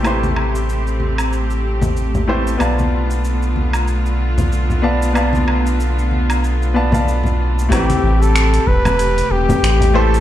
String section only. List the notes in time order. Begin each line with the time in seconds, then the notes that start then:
Already playing: C3 A3 G4
0.05 C4
2.59 D3 B3 F4
7.71 C3 A3 G4